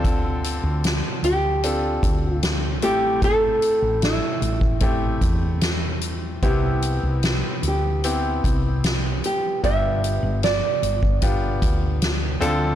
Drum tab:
HH |x-x-x-x-x-x-x-x-|x-x-x-x-x-x-x-x-|x-x-x-x-x-x-x-x-|x-x-x-x-x-x-x-x-|
SD |----o-------o---|----o-------o---|----o-------o---|----o-------o---|
BD |o---------o-----|o------oo-o-----|o---------o-----|o------oo-o-----|